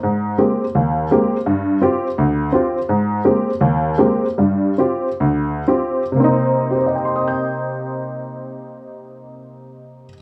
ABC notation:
X:1
M:4/4
L:1/8
Q:"Swing" 1/4=152
K:Cm
V:1 name="Honky-tonk piano"
A,,2 [A,B,CG] z E,,2 [A,B,CG] z | G,,2 [CFG] z D,,2 [CFG] z | A,,2 [A,B,CG] z E,,2 [A,B,CG] z | [G,,G,]2 [CFG] z D,,2 [CFG] z |
z2 [Gcegc'e'g']6- | [Gcegc'e'g']8 |]
V:2 name="Honky-tonk piano"
z8 | z8 | z8 | z8 |
[C,B,CE]8- | [C,B,CE]8 |]